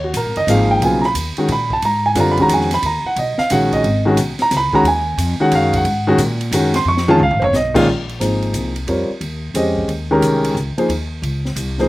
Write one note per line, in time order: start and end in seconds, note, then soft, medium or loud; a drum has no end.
0.00 0.13 D#2 medium
0.04 0.15 F#4 medium
0.14 0.27 A#1 medium
0.14 0.37 A#4 medium
0.14 hi-hat pedal medium
0.14 ride medium
0.25 0.36 G#1 medium
0.36 0.46 F#1 medium
0.36 0.48 D#5 loud
0.36 ride soft
0.47 0.80 G#1 loud
0.47 0.99 F3 medium
0.47 1.00 A#3 medium
0.47 1.00 D#4 medium
0.47 1.00 G#4 medium
0.47 0.70 F5 medium
0.47 hi-hat pedal medium
0.47 ride medium
0.71 0.82 G5 loud
0.80 1.14 B1 medium
0.80 1.02 C#3 medium
0.80 1.02 F#3 medium
0.80 1.02 B3 medium
0.80 1.02 F4 medium
0.80 ride medium
0.85 1.04 G#5 medium
1.01 1.03 A#5 medium
1.01 1.12 B5 loud
1.01 snare soft
1.14 1.35 D#2 medium
1.14 hi-hat pedal medium
1.14 ride medium
1.37 1.48 D#3 medium
1.37 1.48 G#3 medium
1.37 1.48 C#4 medium
1.37 1.49 F#4 medium
1.37 ride soft
1.48 1.81 A#2 loud
1.48 1.72 B5 loud
1.48 ride medium
1.70 1.83 A5 loud
1.70 kick medium
1.82 2.15 G#2 medium
1.82 2.05 A#5 loud
1.82 ride medium
2.06 2.16 G#5 loud
2.15 2.48 F#2 loud
2.15 2.36 D3 medium
2.15 2.36 G3 medium
2.15 2.36 C4 medium
2.15 2.36 F4 medium
2.15 hi-hat pedal medium
2.15 ride medium
2.20 2.29 A#5 medium
2.32 2.40 B5 loud
2.37 2.68 D#3 medium
2.37 2.68 G#3 medium
2.37 2.68 C#4 medium
2.37 2.68 F#4 medium
2.37 kick medium
2.37 ride soft
2.42 2.51 A#5 loud
2.48 2.82 F2 loud
2.48 hi-hat pedal medium
2.48 ride medium
2.54 2.73 G#5 medium
2.61 snare soft
2.71 2.84 B5 loud
2.71 snare medium
2.71 ride medium
2.82 3.03 D#2 medium
2.82 3.06 A#5 medium
2.82 ride medium
3.04 3.17 F#5 loud
3.04 muted upright bass stroke soft
3.16 3.37 B1 medium
3.16 3.39 D#5 medium
3.16 ride medium
3.38 3.50 F5 medium
3.38 muted upright bass stroke soft
3.38 snare medium
3.50 3.83 A#1 loud
3.50 3.84 D#3 medium
3.50 3.84 G#3 medium
3.50 3.85 C#4 medium
3.50 3.85 F#4 medium
3.50 3.72 F#5 loud
3.50 hi-hat pedal medium
3.50 ride medium
3.72 4.04 D#5 loud
3.72 kick medium
3.72 ride medium
3.84 4.16 G#1 medium
3.84 ride medium
4.05 4.16 D#3 medium
4.05 4.16 G#3 medium
4.05 4.17 C#4 medium
4.05 4.17 F#4 loud
4.17 4.37 B1 medium
4.17 hi-hat pedal medium
4.17 ride medium
4.39 4.52 A#5 loud
4.39 muted upright bass stroke soft
4.39 snare soft
4.39 ride soft
4.51 4.71 C#2 loud
4.51 snare soft
4.51 hi-hat pedal medium
4.51 ride medium
4.57 4.75 B5 loud
4.73 4.84 D#3 medium
4.73 4.84 G#3 medium
4.73 4.84 C#4 medium
4.73 4.84 F#4 loud
4.73 4.86 A#5 loud
4.73 muted upright bass stroke soft
4.73 kick medium
4.83 5.17 D#2 medium
4.83 ride medium
4.88 5.38 G#5 loud
5.17 5.38 F2 medium
5.17 hi-hat pedal medium
5.17 ride medium
5.40 5.83 D#3 medium
5.40 5.83 G#3 medium
5.40 5.83 C#4 medium
5.40 5.83 F#4 loud
5.40 5.52 F#5 loud
5.40 muted upright bass stroke soft
5.52 5.84 F#2 loud
5.52 5.75 F5 medium
5.52 ride medium
5.73 6.50 F#5 loud
5.73 kick medium
5.73 ride medium
5.85 6.17 G#2 medium
5.85 ride medium
6.07 6.18 D#3 loud
6.07 6.18 G#3 medium
6.07 6.18 C#4 medium
6.07 6.18 F#4 loud
6.18 6.51 A#2 loud
6.18 hi-hat pedal medium
6.18 ride medium
6.41 ride medium
6.51 6.84 F#2 loud
6.51 6.72 D#3 medium
6.51 6.73 G#3 medium
6.51 6.73 C#4 medium
6.51 6.73 F#4 medium
6.51 hi-hat pedal medium
6.51 ride medium
6.74 6.86 C6 loud
6.74 snare medium
6.74 ride medium
6.85 7.18 F2 loud
6.85 7.08 C#6 loud
6.97 snare medium
7.08 7.19 D#3 medium
7.08 7.19 G#3 medium
7.08 7.19 C#4 medium
7.08 7.19 F4 loud
7.08 7.21 A5 loud
7.08 mid tom medium
7.19 7.30 C#2 loud
7.19 floor tom medium
7.23 7.42 F5 medium
7.30 7.41 A1 medium
7.30 floor tom medium
7.40 7.52 F1 medium
7.40 7.41 C5 medium
7.40 floor tom loud
7.44 7.54 C#5 loud
7.53 7.86 B1 loud
7.53 7.80 D#5 medium
7.53 snare medium
7.53 hi-hat pedal medium
7.74 7.85 A#2 loud
7.74 7.85 D#3 medium
7.74 7.86 G#3 medium
7.74 7.86 C#4 medium
7.74 7.86 F4 loud
7.74 kick medium
7.74 crash loud
7.87 8.19 A#1 medium
8.09 ride soft
8.20 8.53 G#1 medium
8.20 8.71 F3 medium
8.20 8.71 A#3 medium
8.20 8.72 D#4 medium
8.20 8.72 G#4 medium
8.20 8.72 C5 medium
8.20 hi-hat pedal medium
8.20 ride medium
8.42 ride soft
8.53 8.86 C2 medium
8.53 hi-hat pedal medium
8.53 ride medium
8.76 ride soft
8.87 9.08 F2 medium
8.87 9.08 G3 medium
8.87 9.08 C4 medium
8.87 9.08 F4 medium
8.87 9.08 A#4 medium
8.87 9.08 C#5 medium
8.87 ride medium
9.10 muted upright bass stroke soft
9.21 9.54 D#2 medium
9.21 ride medium
9.54 9.87 F2 medium
9.54 9.89 G#3 medium
9.54 9.89 C#4 medium
9.54 9.89 G4 medium
9.54 9.89 C5 medium
9.54 9.90 D#5 medium
9.54 hi-hat pedal medium
9.54 ride medium
9.76 kick medium
9.88 10.20 D#2 medium
9.88 ride medium
10.11 10.54 D#3 medium
10.11 10.54 G#3 medium
10.11 10.54 C#4 medium
10.11 10.54 G4 medium
10.11 10.55 A#4 medium
10.21 10.54 C2 medium
10.21 hi-hat pedal medium
10.21 ride medium
10.44 ride medium
10.55 10.76 C#2 medium
10.55 hi-hat pedal soft
10.78 10.88 F3 medium
10.78 10.88 A#3 medium
10.78 10.89 D#4 medium
10.78 10.89 G#4 medium
10.78 10.89 C5 medium
10.78 ride soft
10.89 11.21 D#2 medium
10.89 ride medium
11.22 11.55 C#2 medium
11.22 ride medium
11.45 snare soft
11.56 11.88 C2 loud
11.56 hi-hat pedal soft
11.56 ride medium
11.78 11.88 F3 medium
11.78 11.88 A#3 medium
11.78 11.88 D#4 medium
11.78 11.88 G#4 medium
11.78 11.88 C5 medium
11.78 snare soft